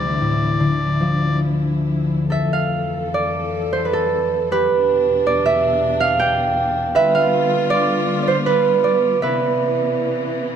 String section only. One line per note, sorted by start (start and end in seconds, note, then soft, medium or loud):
0.00 2.27 F3 medium
0.00 2.27 D4 soft
0.00 2.25 E4 medium
2.29 4.67 F2 medium
2.29 4.67 E3 medium
2.29 4.67 A4 medium
4.69 6.93 E2 medium
4.69 6.93 B2 medium
4.69 6.93 D4 medium
6.94 9.21 D3 medium
6.94 9.22 G3 medium
6.94 10.56 B3 medium
6.94 9.21 F4 medium
9.25 10.56 C3 medium
9.25 10.56 E3 medium